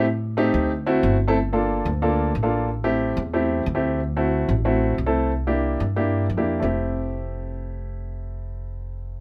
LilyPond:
<<
  \new Staff \with { instrumentName = "Grand piano" } { \time 4/4 \key f \major \tempo 4 = 182 r4 <a c' ees' g'>4 r8 <a c' e' fis'>4 r16 <a c' e' a'>16 | r8 <bes d' f' a'>4 r8 <bes d' f' a'>4 r16 <bes d' f' a'>8. | r8 <a c' e' g'>4 r8 <a c' e' g'>4 r16 <a c' e' g'>8. | r8 <a c' e' fis'>4 r8 <a c' e' fis'>4 r16 <a c' e' a'>8. |
r8 <bes d' e' g'>4 r8 <bes d' e' g'>4 r16 <bes d' e' g'>8. | <a c' e' g'>1~ | <a c' e' g'>1 | }
  \new Staff \with { instrumentName = "Upright bass" } { \clef bass \time 4/4 \key f \major a,4. d,4. g,,4~ | g,,4. d,4. a,,4~ | a,,4. e,4. d,4~ | d,4. a,,4. c,4~ |
c,4. g,4. f,4 | f,,1~ | f,,1 | }
>>